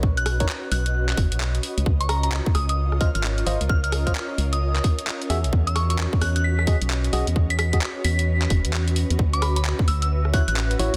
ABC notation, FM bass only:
X:1
M:4/4
L:1/16
Q:"Swing 16ths" 1/4=131
K:Elyd
V:1 name="FM bass" clef=bass
B,,,4 z2 B,,,4 F,,, B,,,3 z C,, | C,,4- C,, z C,,4- C,, G,,,3 G,,, C,,- | C,,4 z2 C,,4 z4 E,, B,,, | E,,4- E,, z E,,4- E,, B,,,3 B,,, E,,- |
E,,4 z2 E,,4 E,,, E,,4 E,, | =D,,4- D,, z D,,4- D,, =A,,,3 A,,, D,, |]